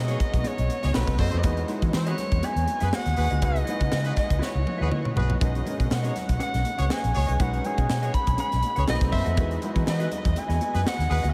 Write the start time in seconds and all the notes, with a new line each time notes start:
Already playing: B2 G#3 C#4 D#4 F#4 B4 D#5
0.08 B3 D#4 F#4 G#4 C#5, closed hi-hat
0.20 muted clean electric guitar stroke, kick, closed hi-hat, muted conga
0.33 B1, muted clean electric guitar stroke, kick, closed hi-hat
0.44 B3 D#4 G#4 C#5 D#5, closed hi-hat
0.57 B1, muted clean electric guitar stroke, closed hi-hat
0.69 muted clean electric guitar stroke, closed hi-hat, muted conga
0.82 C#2 B3 D#4 F#4 G#4 C#5 D#5, snare, closed hi-hat
0.93 B1 A3 C4 D#4 F#4 A4 B4 D#5, snare, high conga
1.07 C2, muted clean electric guitar stroke, kick, snare, closed hi-hat
1.18 F#2 F#4 A4 C5 D#5, muted clean electric guitar stroke, kick, open hi-hat, high conga
1.32 F2 C4 F#4 A4 D#5, closed hi-hat
1.43 E2 G#3 B3 D#4 E4 F#4 G#4 B4 D#5, kick, closed hi-hat, muted conga
1.57 closed hi-hat
1.68 G#3 D#4 E4 F#4 B4, muted clean electric guitar stroke, closed hi-hat, muted conga
1.81 E3 B3 F#4 G#4 D#5, kick, closed hi-hat
1.93 E3 C#5, muted clean electric guitar stroke, snare, high conga
2.06 B3 F#4 G#4 B4 D#5, closed hi-hat
2.18 muted clean electric guitar stroke, snare, closed hi-hat, muted conga, low conga
2.32 E2, muted clean electric guitar stroke, kick, closed hi-hat
2.42 B3 F#4 G#4 E5 G#5, closed hi-hat
2.56 E2, muted clean electric guitar stroke, closed hi-hat
2.67 muted clean electric guitar stroke, closed hi-hat, muted conga
2.80 F#2 B3 F#4 G#4 B4 E5, snare, closed hi-hat
2.92 B3 F#4 G#4 D#5 F#5, snare, high conga
3.06 D#2, muted clean electric guitar stroke, snare, closed hi-hat
3.16 D#2 F#4 G#4 B4, muted clean electric guitar stroke, open hi-hat, high conga
3.30 D2 B3 F#4 G#4 D#5, closed hi-hat
3.42 C#2 G#3 D#4 E4 F#4 B4 D#5, kick, closed hi-hat, muted conga
3.56 closed hi-hat
3.66 G#3 D#4 E4 F#4 B4, muted clean electric guitar stroke, closed hi-hat, muted conga
3.80 C#3 E4 F#4 B4 D#5, kick, closed hi-hat
3.91 C#3, muted clean electric guitar stroke, snare, high conga
4.04 E4 F#4 G#4 B4 D#5, closed hi-hat
4.15 D#5, muted clean electric guitar stroke, kick, snare, closed hi-hat, muted conga
4.29 C#2, muted clean electric guitar stroke, kick, closed hi-hat
4.39 E4 F#4 B4 E5, snare
4.43 C#5
4.53 C#2, muted clean electric guitar stroke
4.65 muted clean electric guitar stroke, high tom, muted conga
4.78 D#2 E4 F#4 G#4 B4 E5
4.90 E4 F#4 B4 D#5, mid tom, high conga
5.03 muted clean electric guitar stroke, mid tom
5.15 B1 F#4 G#4 B4, muted clean electric guitar stroke, floor tom, high conga
5.28 E4 F#4 B4 D#5, floor tom
5.40 B1 G#3 C#4 D#4 F#4 G#4 B4 D#5, kick, closed hi-hat, muted conga
5.55 closed hi-hat
5.64 G#3 C#4 D#4 F#4 A#4, muted clean electric guitar stroke, closed hi-hat, muted conga
5.78 B2 C#4 G#4 B4 D#5, kick, closed hi-hat
5.90 B2, muted clean electric guitar stroke, snare, high conga
5.94 F#5
6.03 C#4 F#4 G#4 B4 C#5 D#5, closed hi-hat
6.14 muted clean electric guitar stroke, snare, closed hi-hat, muted conga, low conga
6.28 B1, muted clean electric guitar stroke, kick, closed hi-hat
6.39 C#4 G#4 B4 F#5, closed hi-hat
6.53 B1, muted clean electric guitar stroke, snare, closed hi-hat
6.64 muted clean electric guitar stroke, closed hi-hat, muted conga
6.78 C#2 C#4 F#4 G#4 B4 C#5 F#5, closed hi-hat
6.89 C#4 G#4 B4 D#5, snare, high conga
6.93 G#5
7.02 A#1, muted clean electric guitar stroke, closed hi-hat
7.14 C#2 F#4 G#4 C#5, muted clean electric guitar stroke, open hi-hat, high conga
7.27 C2 C#4 G#4 B4 D#5, closed hi-hat
7.39 B1 G#3 C#4 D#4 F#4 G#4 B4 D#5 F#5, kick, closed hi-hat, muted conga
7.54 closed hi-hat
7.64 G#3 C#4 D#4 F#4 G#4 G#5, muted clean electric guitar stroke, closed hi-hat, muted conga
7.77 B2 C#4 G#4 B4 D#5, kick, closed hi-hat
7.89 B2, muted clean electric guitar stroke, snare, high conga
8.02 C#4 F#4 G#4 B4 C#5 D#5, closed hi-hat
8.14 B5, muted clean electric guitar stroke, kick, closed hi-hat, muted conga
8.27 B1, muted clean electric guitar stroke, kick, closed hi-hat
8.38 C#4 G#4 B4 F#5 B5, closed hi-hat
8.51 B1, muted clean electric guitar stroke, snare, closed hi-hat
8.63 muted clean electric guitar stroke, closed hi-hat, muted conga
8.76 C#2 C#4 F#4 G#4 B4 C#5 F#5, closed hi-hat
8.87 B1 A3 C4 D#4 F#4 A4 B4 D#5, snare, high conga
9.01 C2, muted clean electric guitar stroke, kick, snare, closed hi-hat
9.12 F#2 F#4 A4 C5 E5, muted clean electric guitar stroke, kick, open hi-hat, high conga
9.25 F2 C4 F#4 A4 D#5, closed hi-hat
9.36 E2 G#3 B3 D#4 E4 F#4 G#4 B4 D#5, kick, closed hi-hat, muted conga
9.51 closed hi-hat
9.61 G#3 D#4 E4 F#4 B4, muted clean electric guitar stroke, closed hi-hat, muted conga
9.74 E3 B3 F#4 G#4 D#5, kick, closed hi-hat
9.86 E3 D#5, muted clean electric guitar stroke, snare, high conga
9.99 B3 F#4 G#4 B4 D#5, closed hi-hat
10.11 muted clean electric guitar stroke, closed hi-hat, low conga
10.25 E2, muted clean electric guitar stroke, kick, closed hi-hat
10.36 G#5, muted clean electric guitar stroke, closed hi-hat
10.48 E2 B3 F#4 G#4 D#5, snare, closed hi-hat
10.61 B3 F#4 G#4 D#5, closed hi-hat, muted conga
10.74 F#2 F#4 G#4 B4, muted clean electric guitar stroke, snare, closed hi-hat
10.85 B3 F#4 G#4 D#5 F#5, snare, high conga
10.99 D#2, muted clean electric guitar stroke, snare, closed hi-hat
11.10 D#2 F#4 G#4 B4, muted clean electric guitar stroke, open hi-hat, high conga
11.23 D2 B3 F#4 G#4 D#5, closed hi-hat
11.30 D#5